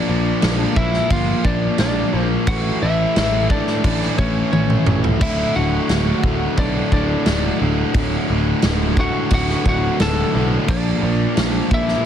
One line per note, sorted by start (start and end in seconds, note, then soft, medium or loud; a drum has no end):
0.00 0.74 D4 medium
0.00 0.80 D5 loud
0.07 0.31 A#1 medium
0.07 0.41 A#2 medium
0.07 0.41 F3 loud
0.07 0.41 A#3 loud
0.42 0.65 A#1 loud
0.42 0.76 A#2 loud
0.42 0.76 F3 loud
0.42 0.77 A#3 loud
0.42 snare loud
0.42 crash medium
0.76 0.99 A#1 loud
0.76 1.09 A#2 loud
0.76 1.10 F3 loud
0.76 1.10 A#3 medium
0.76 1.10 E4 medium
0.76 1.09 E5 medium
0.76 kick medium
0.94 snare soft
1.10 1.33 G1 medium
1.10 1.43 A#2 loud
1.10 1.44 F3 loud
1.10 1.44 A#3 loud
1.10 1.44 F4 medium
1.10 1.43 F5 loud
1.10 kick medium
1.10 crash medium
1.44 1.67 A#1 medium
1.44 1.78 A#2 medium
1.44 1.79 F3 loud
1.44 1.79 A#3 loud
1.44 1.78 D4 medium
1.44 1.79 D5 loud
1.44 kick medium
1.78 2.02 A#1 medium
1.78 2.11 A#2 loud
1.78 2.12 F3 loud
1.78 2.12 A#3 loud
1.78 2.28 D4 medium
1.78 2.27 D5 medium
1.78 snare loud
1.78 crash medium
2.12 2.36 A#1 medium
2.12 2.45 A#2 medium
2.12 2.46 F3 medium
2.12 2.46 A#3 medium
2.47 2.70 A1 loud
2.47 2.81 A2 loud
2.47 2.81 E3 loud
2.47 2.82 A3 loud
2.47 2.81 F#4 medium
2.47 2.80 F#5 loud
2.47 kick loud
2.47 crash medium
2.82 3.05 A1 loud
2.82 3.14 A2 medium
2.82 3.14 E3 medium
2.82 3.15 A3 loud
2.82 3.48 E4 medium
2.82 3.47 E5 loud
3.15 3.61 A1 medium
3.15 3.48 A2 loud
3.15 3.49 E3 loud
3.15 3.50 A3 loud
3.15 snare loud
3.15 crash medium
3.49 3.82 A2 medium
3.49 3.82 E3 loud
3.49 3.84 A3 loud
3.49 4.15 D4 medium
3.49 4.18 D5 medium
3.49 kick loud
3.67 snare soft
3.83 4.07 A1 medium
3.83 4.17 A2 loud
3.83 4.18 E3 loud
3.83 4.19 A3 loud
3.83 kick loud
3.83 crash medium
4.03 snare soft
4.18 4.41 A1 loud
4.18 4.51 A2 loud
4.18 4.51 E3 loud
4.18 4.52 A3 loud
4.18 4.51 C#4 medium
4.18 4.50 C#5 medium
4.18 kick medium
4.52 4.75 A1 medium
4.52 4.85 A2 loud
4.52 4.85 E3 loud
4.52 4.86 A3 loud
4.52 5.01 C#4 medium
4.52 5.00 C#5 medium
4.52 high tom medium
4.70 mid tom medium
4.86 5.10 A1 medium
4.86 5.19 A2 medium
4.86 5.19 E3 medium
4.86 5.21 A3 medium
4.86 mid tom loud
5.04 floor tom medium
5.20 5.44 D1 medium
5.20 5.55 D2 loud
5.20 5.54 A2 loud
5.20 5.56 D3 loud
5.20 5.54 E4 medium
5.20 5.54 E5 medium
5.20 kick loud
5.20 splash loud
5.20 crash medium
5.55 5.78 D1 medium
5.55 5.89 D2 medium
5.55 5.89 A2 loud
5.55 5.90 D3 loud
5.55 6.55 F#4 medium
5.55 6.54 F#5 loud
5.89 6.12 D1 medium
5.89 6.24 D2 loud
5.89 6.24 A2 loud
5.89 6.25 D3 loud
5.89 snare loud
5.89 crash medium
6.24 6.46 D1 medium
6.24 6.57 D2 medium
6.24 6.57 A2 loud
6.24 6.58 D3 loud
6.24 kick medium
6.57 6.80 B1 medium
6.57 6.91 D2 medium
6.57 6.92 A2 loud
6.57 6.92 D3 loud
6.57 6.91 D4 medium
6.57 6.91 D5 medium
6.57 kick loud
6.57 crash medium
6.92 7.15 D1 medium
6.92 7.25 D2 medium
6.92 7.26 A2 medium
6.92 7.26 D3 loud
6.92 7.57 D4 medium
6.92 7.57 D5 medium
6.92 kick medium
7.26 7.49 D1 loud
7.26 7.59 D2 loud
7.26 7.60 A2 loud
7.26 7.60 D3 loud
7.26 snare loud
7.26 crash medium
7.60 7.84 D1 medium
7.60 7.93 D2 medium
7.60 7.94 A2 medium
7.60 7.94 D3 medium
7.94 8.17 D1 loud
7.94 8.28 D2 loud
7.94 8.28 A2 loud
7.94 8.29 D3 loud
7.94 kick loud
7.94 crash medium
8.29 8.52 D1 medium
8.29 8.62 D2 medium
8.29 8.62 A2 medium
8.29 8.63 D3 medium
8.62 9.09 D1 medium
8.62 8.96 D2 loud
8.62 8.97 A2 loud
8.62 8.97 D3 loud
8.62 snare loud
8.62 crash medium
8.97 9.29 D2 medium
8.97 9.30 A2 medium
8.97 9.30 D3 loud
8.97 9.31 F#4 medium
8.97 9.33 F#5 loud
8.97 kick medium
9.30 9.54 D1 medium
9.30 9.63 D2 medium
9.30 9.64 A2 loud
9.30 9.64 D3 medium
9.30 9.65 F#4 medium
9.30 9.68 F#5 loud
9.30 kick loud
9.30 crash medium
9.50 snare soft
9.65 9.88 D1 loud
9.65 9.97 D2 loud
9.65 9.97 A2 loud
9.65 9.98 D3 loud
9.65 9.99 F#4 medium
9.65 kick medium
9.69 10.00 F#5 loud
9.98 10.23 D1 medium
9.98 10.32 D2 loud
9.98 10.32 A2 loud
9.98 10.33 D3 loud
9.98 10.49 A4 medium
9.98 10.49 A5 loud
9.98 snare loud
9.98 crash medium
10.33 10.57 B1 medium
10.33 10.66 D2 medium
10.33 10.66 A2 medium
10.33 10.66 D3 loud
10.67 10.91 A#1 loud
10.67 11.00 A#2 medium
10.67 11.01 F3 loud
10.67 11.01 A#3 loud
10.67 11.68 D4 medium
10.67 11.44 D5 medium
10.67 kick loud
10.67 crash medium
11.02 11.25 A#1 loud
11.02 11.35 A#2 loud
11.02 11.36 F3 loud
11.02 11.36 A#3 loud
11.37 11.60 A#1 medium
11.37 11.69 A#2 loud
11.37 11.70 F3 loud
11.37 11.71 A#3 loud
11.37 snare loud
11.37 crash medium
11.44 11.75 C5 medium
11.71 11.94 A#1 medium
11.71 12.04 A#2 loud
11.71 12.04 F3 medium
11.71 12.05 A#3 loud
11.71 12.05 E4 medium
11.71 12.05 E5 loud
11.71 kick medium
11.88 snare soft